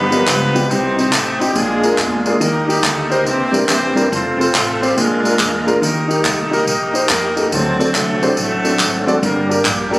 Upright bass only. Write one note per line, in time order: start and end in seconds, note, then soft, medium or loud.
0.00 0.21 G1 loud
0.27 0.63 C#2 medium
0.70 1.07 C2 loud
1.13 1.49 A1 medium
1.55 1.92 A#1 loud
1.98 2.34 E2 loud
2.41 2.77 D#2 loud
2.83 3.26 D2 loud
3.26 3.62 C2 loud
3.70 4.06 E2 loud
4.12 4.48 F1 loud
4.55 4.91 A1 medium
4.97 5.33 A#1 loud
5.39 5.76 E2 loud
5.82 6.18 D#2 loud
6.24 6.61 C2 medium
6.67 7.03 A#1 loud
7.10 7.46 F2 loud
7.52 7.88 D2 loud
7.95 8.31 C2 medium
8.37 8.73 A1 loud
8.80 9.16 G#1 loud
9.23 9.65 G1 loud
9.65 9.99 A#1 loud